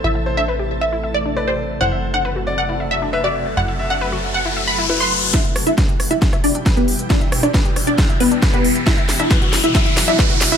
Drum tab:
HH |----------------|----------------|----------------|xxoxxxoxxxoxxxox|
SD |----------------|----------------|----------------|o-r-o-r-or--o---|
BD |----------------|----------------|----------------|o---o---o---o---|

HH |xxoxxxoxxxoxxxox|xxoxxxoxxxoxxxox|
SD |o-rro-r-o---o---|o-o-o-o-o-o-o-o-|
BD |o---o---o---o---|o---o---o---o---|